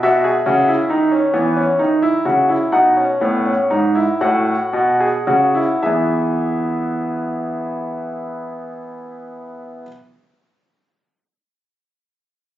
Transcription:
<<
  \new Staff \with { instrumentName = "Grand piano" } { \time 12/8 \key e \major \tempo 4. = 35 << { e''2. fis''4. fis''4. | <b e' e''>1. | } \\ { fis'16 gis'16 fis'16 e'16 dis'16 cis'16 b16 cis'16 dis'16 e'16 fis'16 e'16 dis'16 cis'16 b16 cis'16 dis'16 e'16 fis'8. gis'16 fis'16 e'16 | gis'1. | } >> }
  \new Staff \with { instrumentName = "Grand piano" } { \clef bass \time 12/8 \key e \major b,8 cis8 dis8 e8 dis8 cis8 b,8 a,8 gis,8 a,8 b,8 cis8 | e1. | }
>>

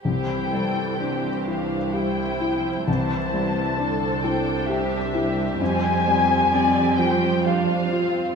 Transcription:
<<
  \new Staff \with { instrumentName = "Violin section" } { \time 3/4 \key c \major \tempo 4 = 65 g''4. f''8 g''4 | a''4. g''8 e''4 | aes''4. g''8 f''4 | }
  \new Staff \with { instrumentName = "Violin section" } { \time 3/4 \key c \major << { c''4 c''4 c''4 | c''4 c''2 | c''4 d''8 c''8 c''4 | } \\ { g'8 a'8 g'4 e'4 | e'4 a'4 g'8 g'8~ | g'2 f'4 | } >> }
  \new Staff \with { instrumentName = "Felt piano" } { \time 3/4 \key c \major c,8 g8 d'8 e8 g'8 e'8 | c,8 g8 d'8 e'8 g'8 e'8 | f,8 g8 c'8 f'8 g'8 f'8 | }
  \new Staff \with { instrumentName = "Viola section" } { \time 3/4 \key c \major << { e'4 c'8 d'8 e'4 | c'4 d'2 | c'8 c'8 c'4 d'8 c'8 | } \\ { e2 g8 f8 | e8 e8 d8 g4.~ | g2. | } >> }
  \new Staff \with { instrumentName = "Cello section" } { \clef bass \time 3/4 \key c \major c,2. | c,2. | f,2. | }
>>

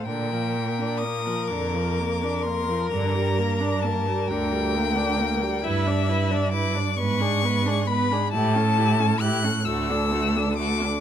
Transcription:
<<
  \new Staff \with { instrumentName = "Violin" } { \time 6/8 \key g \minor \tempo 4. = 44 g''4 ees'''8 d'''4 c'''8 | bes''4 a''8 g''4. | \key d \major e''4 d'''8 cis'''4 b''8 | a''4 fis'''8 e'''4 d'''8 | }
  \new Staff \with { instrumentName = "Violin" } { \time 6/8 \key g \minor bes'2.~ | bes'2. | \key d \major b'16 d''16 b'16 d''16 b'16 d''16 b'16 gis'16 b'16 gis'16 b'16 gis'16 | g'16 a'16 g'16 a'16 g'16 a'16 fis'16 a'16 fis'16 a'16 fis'16 a'16 | }
  \new Staff \with { instrumentName = "Viola" } { \time 6/8 \key g \minor d16 f16 bes16 d'16 bes16 f16 d16 f16 bes16 d'16 bes16 f16 | d16 g16 bes16 d'16 bes16 g16 d16 g16 bes16 d'16 bes16 g16 | \key d \major e'16 d'16 e'16 d'16 e'16 d'16 b16 d'16 b16 d'16 b16 d'16 | e'16 cis'16 e'16 cis'16 e'16 cis'16 a16 d'16 a16 d'16 a16 d'16 | }
  \new Staff \with { instrumentName = "Cello" } { \clef bass \time 6/8 \key g \minor bes,4. f,4. | g,4. d,4. | \key d \major g,4. gis,4. | a,4. d,4. | }
>>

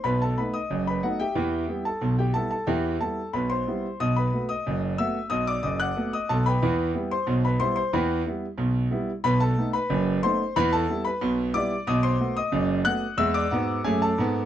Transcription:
<<
  \new Staff \with { instrumentName = "Grand piano" } { \time 2/4 \key e \minor \tempo 4 = 91 <b' b''>16 <a' a''>16 <b' b''>16 <dis'' dis'''>8 <b' b''>16 <fis' fis''>16 <g' e'' g''>16~ | <g' e'' g''>8. <a' a''>8 <g' g''>16 <a' a''>16 <a' a''>16 | <g' e'' g''>8 <a' a''>8 <b' b''>16 <c'' c'''>8. | <dis'' dis'''>16 <b' b''>8 <dis'' dis'''>8. <e'' e'''>8 |
<dis'' dis'''>16 <d'' d'''>16 <dis'' dis'''>16 <fis'' fis'''>8 <dis'' dis'''>16 <a' a''>16 <b' g'' b''>16~ | <b' g'' b''>8. <c'' c'''>8 <b' b''>16 <c'' c'''>16 <c'' c'''>16 | <b' g'' b''>8 r4. | <b' b''>16 <a' a''>8 <b' b''>8. <c'' c'''>8 |
<b' b''>16 <a' a''>8 <b' b''>8. <d'' d'''>8 | <dis'' dis'''>16 <c'' c'''>8 <dis'' dis'''>8. <fis'' fis'''>8 | <e'' e'''>16 <d'' d'''>16 <fis' fis''>8 <gis' gis''>16 <a' a''>8. | }
  \new Staff \with { instrumentName = "Grand piano" } { \clef bass \time 2/4 \key e \minor <b,, b,>8 <a b dis'>8 <fis,, fis,>8 <a b dis'>8 | <e, e>8 <g b e'>8 <b,, b,>8 <g b e'>8 | <e, e>8 <g b e'>8 <b,, b,>8 <g b e'>8 | <b,, b,>8 <a b fis'>8 <fis,, fis,>8 <a b fis'>8 |
<b,, b,>8 <fis,, fis,>8 <a b fis'>8 <b,, b,>8 | <e, e>8 <g b e'>8 <b,, b,>8 <g b e'>8 | <e, e>8 <g b e'>8 <b,, b,>8 <g b e'>8 | <b,, b,>8 <a b dis'>8 <fis,, fis,>8 <a b dis'>8 |
<e, e>8 <g b e'>8 <b,, b,>8 <g b e'>8 | <b,, b,>8 <a b fis'>8 <fis,, fis,>8 <a b fis'>8 | <e, gis>8 <gis, b>8 <fis, a>8 <gis, b>8 | }
>>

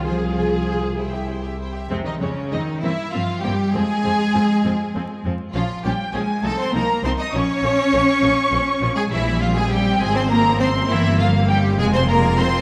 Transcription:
<<
  \new Staff \with { instrumentName = "Violin section" } { \time 6/8 \key f \minor \tempo 4. = 67 aes''16 f''16 aes''16 f''16 aes''16 f''16 g''16 e''16 g''16 e''16 g''16 e''16 | c''16 ees''16 des''8 ees''8 e''8 f''8 g''8 | aes''2~ aes''8 r8 | f''8 g''8 aes''8 a''16 c'''16 bes''8 c'''16 ees'''16 |
des'''2~ des'''8. aes''16 | e''8 f''16 aes''16 g''8 aes''16 c'''16 bes''8 c'''8 | e''8 f''8 g''8 aes''16 c'''16 bes''8 c'''8 | }
  \new Staff \with { instrumentName = "Violin section" } { \time 6/8 \key f \minor <f' c''>16 aes'16 <f' c''>16 aes'16 <f' c''>16 aes'16 <e' c''>16 <g' e''>16 <e' c''>16 <g' e''>16 <e' c''>16 <g' e''>16 | c'16 ees'16 des'8 ees'8 e'8 f'8 g'8 | aes'2~ aes'8 r8 | f'8 g'8 aes'8 a'16 c''16 bes'8 c''16 ees''16 |
des''2~ des''8. aes'16 | e'8 f'16 aes'16 g'8 aes'16 c''16 bes'8 c''8 | e'8 f'8 g'8 aes'16 c''16 bes'8 c''8 | }
  \new Staff \with { instrumentName = "French horn section" } { \time 6/8 \key f \minor <f' aes'>4. <e' g'>4 r8 | r2. | r2. | r2. |
r2. | r2. | r2. | }
  \new Staff \with { instrumentName = "Viola section" } { \time 6/8 \key f \minor << { aes'2~ aes'16 r8. | c'8 c'8 c'8 c'8 c'8 c'8 | c'8 c'8 c'8 c'8 c'8 c'8 | des'8 des'8 des'8 ees'8 ees'8 ees'8 |
des'8 des'8 des'8 des'8 des'8 des'8 | c'2.~ | c'4. f'4. | } \\ { r2. | aes8 aes8 aes8 bes8 bes8 bes8 | f8 f8 f8 f8 f8 f8 | f8 f8 f8 f8 f8 f8 |
f8 f8 f8 f8 f8 f8 | g4. f4. | bes4. aes4. | } >> }
  \new Staff \with { instrumentName = "Cello section" } { \clef bass \time 6/8 \key f \minor f4. r4. | c16 ees16 des8 ees8 e8 f8 g8 | aes2~ aes8 r8 | f8 g8 aes8 a16 c'16 bes8 c'16 ees'16 |
des'2~ des'8. aes16 | e8 f16 aes16 g8 aes16 c'16 bes8 c'8 | e8 f8 g8 aes16 c'16 bes8 c'8 | }
  \new Staff \with { instrumentName = "Double bass section" } { \clef bass \time 6/8 \key f \minor c,2~ c,8 r8 | f,8 f,8 f,8 g,8 g,8 g,8 | f,8 f,8 f,8 f,8 f,8 f,8 | bes,,8 bes,,8 bes,,8 c,8 c,8 c,8 |
bes,,8 bes,,8 bes,,8 bes,,8 bes,,8 bes,,8 | bes,,4. aes,,4. | g,,4. f,,4. | }
>>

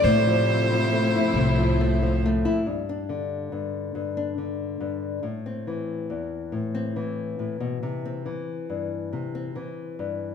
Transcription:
<<
  \new Staff \with { instrumentName = "Steel-string acoustic guitar" } { \time 6/8 \key g \mixolydian \tempo 4. = 46 d''8 r2 r8 | r2. | r2. | r2. | }
  \new Staff \with { instrumentName = "Violin" } { \time 6/8 \key g \mixolydian c''2~ c''8 r8 | r2. | r2. | r2. | }
  \new Staff \with { instrumentName = "String section" } { \clef bass \time 6/8 \key g \mixolydian <c f a e'>2. | r2. | r2. | r2. | }
  \new Staff \with { instrumentName = "Nylon-string guitar" } { \clef bass \time 6/8 \key g \mixolydian << { r8 a8 a16 e'8. a8 a16 e'16 | r16 d'4. d'4~ d'16 | r16 c'4. c'4~ c'16 | r16 c'4. c'4~ c'16 | } \\ { a,16 f8 f8. a,16 f8 f8. | g,8 d8 g,8 g,8 d8 g,8 | a,8 e8 e,8 a,8 e8 a,16 b,16 | c8 e8 g,8 c8 e8 g,8 | } >> }
  \new Staff \with { instrumentName = "Upright bass" } { \clef bass \time 6/8 \key g \mixolydian a,4. c,4. | r2. | r2. | r2. | }
>>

